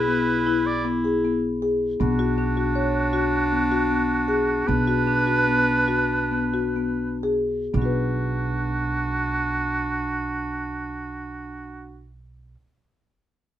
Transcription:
0, 0, Header, 1, 5, 480
1, 0, Start_track
1, 0, Key_signature, 2, "minor"
1, 0, Tempo, 383142
1, 2511, Time_signature, 7, 2, 24, 8
1, 5867, Tempo, 408441
1, 7787, Tempo, 462606
1, 8747, Tempo, 500000
1, 9227, Tempo, 508906
1, 14745, End_track
2, 0, Start_track
2, 0, Title_t, "Oboe"
2, 0, Program_c, 0, 68
2, 0, Note_on_c, 0, 71, 89
2, 830, Note_on_c, 0, 74, 96
2, 849, Note_off_c, 0, 71, 0
2, 1071, Note_off_c, 0, 74, 0
2, 2513, Note_on_c, 0, 66, 85
2, 5856, Note_on_c, 0, 71, 118
2, 5875, Note_off_c, 0, 66, 0
2, 8742, Note_off_c, 0, 71, 0
2, 9235, Note_on_c, 0, 66, 88
2, 13306, Note_off_c, 0, 66, 0
2, 14745, End_track
3, 0, Start_track
3, 0, Title_t, "Marimba"
3, 0, Program_c, 1, 12
3, 100, Note_on_c, 1, 59, 68
3, 381, Note_off_c, 1, 59, 0
3, 583, Note_on_c, 1, 64, 72
3, 863, Note_off_c, 1, 64, 0
3, 1059, Note_on_c, 1, 59, 71
3, 1201, Note_off_c, 1, 59, 0
3, 1308, Note_on_c, 1, 68, 72
3, 1448, Note_off_c, 1, 68, 0
3, 1561, Note_on_c, 1, 59, 67
3, 1835, Note_off_c, 1, 59, 0
3, 2035, Note_on_c, 1, 68, 70
3, 2310, Note_off_c, 1, 68, 0
3, 2504, Note_on_c, 1, 59, 85
3, 2644, Note_off_c, 1, 59, 0
3, 2745, Note_on_c, 1, 66, 71
3, 2884, Note_off_c, 1, 66, 0
3, 2982, Note_on_c, 1, 62, 76
3, 3122, Note_off_c, 1, 62, 0
3, 3219, Note_on_c, 1, 66, 64
3, 3360, Note_off_c, 1, 66, 0
3, 3451, Note_on_c, 1, 73, 71
3, 3732, Note_off_c, 1, 73, 0
3, 3923, Note_on_c, 1, 66, 77
3, 4205, Note_off_c, 1, 66, 0
3, 4414, Note_on_c, 1, 59, 71
3, 4554, Note_off_c, 1, 59, 0
3, 4656, Note_on_c, 1, 66, 76
3, 4796, Note_off_c, 1, 66, 0
3, 4893, Note_on_c, 1, 59, 66
3, 5173, Note_off_c, 1, 59, 0
3, 5363, Note_on_c, 1, 68, 75
3, 5648, Note_off_c, 1, 68, 0
3, 5855, Note_on_c, 1, 59, 81
3, 5991, Note_off_c, 1, 59, 0
3, 6091, Note_on_c, 1, 66, 74
3, 6226, Note_off_c, 1, 66, 0
3, 6323, Note_on_c, 1, 62, 73
3, 6460, Note_off_c, 1, 62, 0
3, 6555, Note_on_c, 1, 66, 66
3, 6694, Note_off_c, 1, 66, 0
3, 6797, Note_on_c, 1, 59, 72
3, 7077, Note_off_c, 1, 59, 0
3, 7271, Note_on_c, 1, 66, 74
3, 7565, Note_off_c, 1, 66, 0
3, 7784, Note_on_c, 1, 59, 74
3, 7918, Note_off_c, 1, 59, 0
3, 8015, Note_on_c, 1, 66, 77
3, 8152, Note_off_c, 1, 66, 0
3, 8247, Note_on_c, 1, 59, 66
3, 8533, Note_off_c, 1, 59, 0
3, 8737, Note_on_c, 1, 68, 78
3, 9018, Note_off_c, 1, 68, 0
3, 9223, Note_on_c, 1, 59, 57
3, 9259, Note_on_c, 1, 62, 55
3, 9297, Note_on_c, 1, 66, 58
3, 9332, Note_on_c, 1, 71, 58
3, 13754, Note_off_c, 1, 59, 0
3, 13789, Note_off_c, 1, 62, 0
3, 13827, Note_off_c, 1, 66, 0
3, 13862, Note_off_c, 1, 71, 0
3, 14745, End_track
4, 0, Start_track
4, 0, Title_t, "Clarinet"
4, 0, Program_c, 2, 71
4, 0, Note_on_c, 2, 64, 97
4, 2132, Note_off_c, 2, 64, 0
4, 2520, Note_on_c, 2, 62, 91
4, 5822, Note_off_c, 2, 62, 0
4, 5849, Note_on_c, 2, 62, 84
4, 8939, Note_off_c, 2, 62, 0
4, 9229, Note_on_c, 2, 62, 67
4, 13303, Note_off_c, 2, 62, 0
4, 14745, End_track
5, 0, Start_track
5, 0, Title_t, "Upright bass"
5, 0, Program_c, 3, 32
5, 0, Note_on_c, 3, 35, 66
5, 2459, Note_off_c, 3, 35, 0
5, 2512, Note_on_c, 3, 35, 72
5, 5818, Note_off_c, 3, 35, 0
5, 5869, Note_on_c, 3, 35, 72
5, 9190, Note_off_c, 3, 35, 0
5, 9224, Note_on_c, 3, 35, 76
5, 13755, Note_off_c, 3, 35, 0
5, 14745, End_track
0, 0, End_of_file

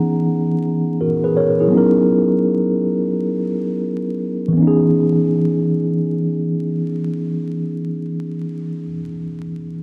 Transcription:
0, 0, Header, 1, 2, 480
1, 0, Start_track
1, 0, Tempo, 500000
1, 9435, End_track
2, 0, Start_track
2, 0, Title_t, "Tine electric piano"
2, 0, Program_c, 0, 4
2, 0, Control_c, 0, 64, 127
2, 0, Note_on_c, 0, 52, 73
2, 0, Note_on_c, 0, 59, 67
2, 0, Note_on_c, 0, 61, 64
2, 0, Note_on_c, 0, 63, 69
2, 0, Note_on_c, 0, 68, 79
2, 0, Note_on_c, 0, 78, 50
2, 0, Note_on_c, 0, 82, 60
2, 943, Note_off_c, 0, 63, 0
2, 954, Note_off_c, 0, 68, 0
2, 967, Note_on_c, 0, 70, 55
2, 973, Note_on_c, 0, 66, 50
2, 1181, Note_off_c, 0, 70, 0
2, 1184, Note_off_c, 0, 66, 0
2, 1191, Note_on_c, 0, 71, 68
2, 1198, Note_on_c, 0, 68, 54
2, 1305, Note_off_c, 0, 71, 0
2, 1309, Note_off_c, 0, 68, 0
2, 1312, Note_on_c, 0, 73, 70
2, 1317, Note_on_c, 0, 70, 57
2, 1525, Note_off_c, 0, 73, 0
2, 1527, Note_off_c, 0, 70, 0
2, 1537, Note_on_c, 0, 68, 59
2, 1543, Note_on_c, 0, 64, 53
2, 1594, Note_off_c, 0, 52, 0
2, 1606, Note_off_c, 0, 59, 0
2, 1610, Note_on_c, 0, 54, 71
2, 1617, Note_off_c, 0, 61, 0
2, 1632, Note_on_c, 0, 59, 61
2, 1656, Note_on_c, 0, 61, 57
2, 1668, Control_c, 0, 64, 0
2, 1675, Note_off_c, 0, 82, 0
2, 1677, Note_off_c, 0, 78, 0
2, 1677, Note_on_c, 0, 63, 63
2, 1701, Note_on_c, 0, 70, 78
2, 1831, Control_c, 0, 64, 127
2, 1862, Note_off_c, 0, 68, 0
2, 1866, Note_off_c, 0, 64, 0
2, 4304, Note_on_c, 0, 52, 74
2, 4337, Note_off_c, 0, 54, 0
2, 4337, Note_off_c, 0, 59, 0
2, 4349, Note_on_c, 0, 59, 62
2, 4360, Note_off_c, 0, 61, 0
2, 4370, Note_off_c, 0, 63, 0
2, 4383, Note_off_c, 0, 70, 0
2, 4395, Note_on_c, 0, 61, 66
2, 4411, Control_c, 0, 64, 0
2, 4440, Note_on_c, 0, 63, 66
2, 4486, Note_on_c, 0, 68, 81
2, 4586, Control_c, 0, 64, 127
2, 8495, Note_off_c, 0, 52, 0
2, 8518, Note_off_c, 0, 59, 0
2, 8541, Note_off_c, 0, 61, 0
2, 8563, Note_off_c, 0, 63, 0
2, 8587, Note_off_c, 0, 68, 0
2, 9435, End_track
0, 0, End_of_file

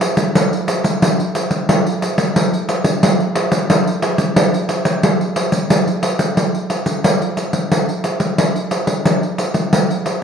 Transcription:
0, 0, Header, 1, 2, 480
1, 0, Start_track
1, 0, Tempo, 670391
1, 730, Time_signature, 4, 2, 24, 8
1, 7325, End_track
2, 0, Start_track
2, 0, Title_t, "Pandeiro"
2, 8, Note_on_c, 9, 54, 64
2, 79, Note_off_c, 9, 54, 0
2, 121, Note_on_c, 9, 54, 59
2, 193, Note_off_c, 9, 54, 0
2, 253, Note_on_c, 9, 54, 81
2, 325, Note_off_c, 9, 54, 0
2, 379, Note_on_c, 9, 54, 33
2, 450, Note_off_c, 9, 54, 0
2, 487, Note_on_c, 9, 54, 69
2, 558, Note_off_c, 9, 54, 0
2, 604, Note_on_c, 9, 54, 59
2, 676, Note_off_c, 9, 54, 0
2, 733, Note_on_c, 9, 54, 73
2, 804, Note_off_c, 9, 54, 0
2, 857, Note_on_c, 9, 54, 33
2, 928, Note_off_c, 9, 54, 0
2, 967, Note_on_c, 9, 54, 61
2, 1038, Note_off_c, 9, 54, 0
2, 1079, Note_on_c, 9, 54, 55
2, 1150, Note_off_c, 9, 54, 0
2, 1210, Note_on_c, 9, 54, 85
2, 1281, Note_off_c, 9, 54, 0
2, 1336, Note_on_c, 9, 54, 35
2, 1407, Note_off_c, 9, 54, 0
2, 1449, Note_on_c, 9, 54, 57
2, 1520, Note_off_c, 9, 54, 0
2, 1560, Note_on_c, 9, 54, 60
2, 1632, Note_off_c, 9, 54, 0
2, 1690, Note_on_c, 9, 54, 72
2, 1762, Note_off_c, 9, 54, 0
2, 1815, Note_on_c, 9, 54, 31
2, 1887, Note_off_c, 9, 54, 0
2, 1924, Note_on_c, 9, 54, 65
2, 1996, Note_off_c, 9, 54, 0
2, 2037, Note_on_c, 9, 54, 58
2, 2108, Note_off_c, 9, 54, 0
2, 2169, Note_on_c, 9, 54, 83
2, 2241, Note_off_c, 9, 54, 0
2, 2292, Note_on_c, 9, 54, 30
2, 2364, Note_off_c, 9, 54, 0
2, 2402, Note_on_c, 9, 54, 65
2, 2474, Note_off_c, 9, 54, 0
2, 2518, Note_on_c, 9, 54, 61
2, 2589, Note_off_c, 9, 54, 0
2, 2648, Note_on_c, 9, 54, 78
2, 2719, Note_off_c, 9, 54, 0
2, 2774, Note_on_c, 9, 54, 34
2, 2845, Note_off_c, 9, 54, 0
2, 2881, Note_on_c, 9, 54, 67
2, 2953, Note_off_c, 9, 54, 0
2, 2995, Note_on_c, 9, 54, 58
2, 3066, Note_off_c, 9, 54, 0
2, 3124, Note_on_c, 9, 54, 84
2, 3196, Note_off_c, 9, 54, 0
2, 3251, Note_on_c, 9, 54, 33
2, 3322, Note_off_c, 9, 54, 0
2, 3357, Note_on_c, 9, 54, 62
2, 3429, Note_off_c, 9, 54, 0
2, 3474, Note_on_c, 9, 54, 62
2, 3545, Note_off_c, 9, 54, 0
2, 3604, Note_on_c, 9, 54, 72
2, 3675, Note_off_c, 9, 54, 0
2, 3730, Note_on_c, 9, 54, 31
2, 3801, Note_off_c, 9, 54, 0
2, 3838, Note_on_c, 9, 54, 65
2, 3910, Note_off_c, 9, 54, 0
2, 3953, Note_on_c, 9, 54, 60
2, 4025, Note_off_c, 9, 54, 0
2, 4083, Note_on_c, 9, 54, 82
2, 4155, Note_off_c, 9, 54, 0
2, 4206, Note_on_c, 9, 54, 32
2, 4278, Note_off_c, 9, 54, 0
2, 4316, Note_on_c, 9, 54, 65
2, 4387, Note_off_c, 9, 54, 0
2, 4433, Note_on_c, 9, 54, 59
2, 4504, Note_off_c, 9, 54, 0
2, 4561, Note_on_c, 9, 54, 67
2, 4633, Note_off_c, 9, 54, 0
2, 4687, Note_on_c, 9, 54, 27
2, 4759, Note_off_c, 9, 54, 0
2, 4796, Note_on_c, 9, 54, 60
2, 4868, Note_off_c, 9, 54, 0
2, 4911, Note_on_c, 9, 54, 50
2, 4983, Note_off_c, 9, 54, 0
2, 5043, Note_on_c, 9, 54, 77
2, 5115, Note_off_c, 9, 54, 0
2, 5167, Note_on_c, 9, 54, 31
2, 5239, Note_off_c, 9, 54, 0
2, 5278, Note_on_c, 9, 54, 57
2, 5349, Note_off_c, 9, 54, 0
2, 5392, Note_on_c, 9, 54, 54
2, 5464, Note_off_c, 9, 54, 0
2, 5524, Note_on_c, 9, 54, 66
2, 5596, Note_off_c, 9, 54, 0
2, 5647, Note_on_c, 9, 54, 27
2, 5719, Note_off_c, 9, 54, 0
2, 5756, Note_on_c, 9, 54, 57
2, 5828, Note_off_c, 9, 54, 0
2, 5870, Note_on_c, 9, 54, 52
2, 5942, Note_off_c, 9, 54, 0
2, 6002, Note_on_c, 9, 54, 73
2, 6074, Note_off_c, 9, 54, 0
2, 6127, Note_on_c, 9, 54, 29
2, 6199, Note_off_c, 9, 54, 0
2, 6237, Note_on_c, 9, 54, 61
2, 6309, Note_off_c, 9, 54, 0
2, 6353, Note_on_c, 9, 54, 52
2, 6424, Note_off_c, 9, 54, 0
2, 6483, Note_on_c, 9, 54, 74
2, 6555, Note_off_c, 9, 54, 0
2, 6610, Note_on_c, 9, 54, 29
2, 6681, Note_off_c, 9, 54, 0
2, 6719, Note_on_c, 9, 54, 56
2, 6791, Note_off_c, 9, 54, 0
2, 6833, Note_on_c, 9, 54, 52
2, 6905, Note_off_c, 9, 54, 0
2, 6965, Note_on_c, 9, 54, 76
2, 7037, Note_off_c, 9, 54, 0
2, 7093, Note_on_c, 9, 54, 31
2, 7164, Note_off_c, 9, 54, 0
2, 7202, Note_on_c, 9, 54, 56
2, 7273, Note_off_c, 9, 54, 0
2, 7325, End_track
0, 0, End_of_file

